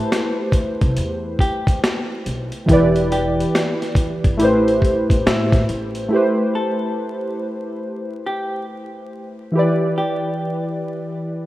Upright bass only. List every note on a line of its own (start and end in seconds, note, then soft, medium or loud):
0.82 0.95 C2 medium
0.98 1.34 E2 medium
2.26 2.49 B1 medium
2.69 3.42 E1 loud
4.25 4.41 G1 medium
4.41 5.00 A1 loud
5.10 5.23 A1 medium
5.26 5.62 A2 medium
5.69 6.05 A1 medium